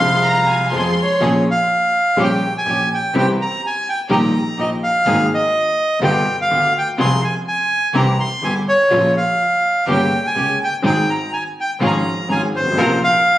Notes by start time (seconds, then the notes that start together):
Already playing: F5 C6
0.00 C2 C3 F3 G#3 C4 F4 G#4
0.23 A#5
0.48 G#5
0.71 F2 F3 G#3 C4 F4 G#4 C6
0.78 G#5
1.02 C#5
1.20 A#1 A#2 F3 A#3 C#4 G#4
1.51 F5
2.17 A#1 A#2 C#3 G3 A#3 C#4 G4
2.23 G5
2.58 G#5
2.65 A#1 A#2 A#3 C#4 G4
2.94 G5
3.13 C2 C3 E3 G3 C4 E4 G4
3.18 G5
3.41 A#5
3.66 G#5
3.89 G5
4.09 A#1 A#2 D#3 G3 A#3 D#4 G4 A#5
4.57 A#1 A#2 A#3 D#4 G4 D#5
4.83 F5
5.05 G#1 G#2 D#3 G#3 A#3 D#4 G#4
5.34 D#5
6.01 G1 G2 D3 G3 B3 F4 G4 G5
6.41 F5
6.50 D2 D3 B3 F4 G4
6.78 G5
6.97 C2 C3 F3 G#3 C4 F4 G#4 C6
7.24 G#5
7.48 G#5
7.93 C2 C3 E3 G3 C4 E4 G4 A#5
8.20 C6
8.42 G1 G2 C4 E4 G4 G#5
8.68 C#5
8.90 A#1 A#2 C#3 F3 A#3 C#4 F4
9.17 F5
9.86 G1 G2 C#3 G3 A#3 C#4 G4
9.91 G5
10.27 G#5
10.35 C#2 C#3 A#3 C#4 G4
10.64 G5
10.82 G#1 G#2 D#3 G#3 C4 D#4 G#4 G5
11.10 A#5
11.33 G#5
11.61 G5
11.80 G#1 G#2 C#3 F3 G#3 C#4 F4 G#4
11.86 A#5
12.28 G#1 G#2 C#4 F4 G#4 G#5
12.53 G#1 C5
12.60 G1
12.66 G#1
12.72 A1
12.76 A#1 A#2 C3 F3 A#3 C4 F4 A#4
13.04 F5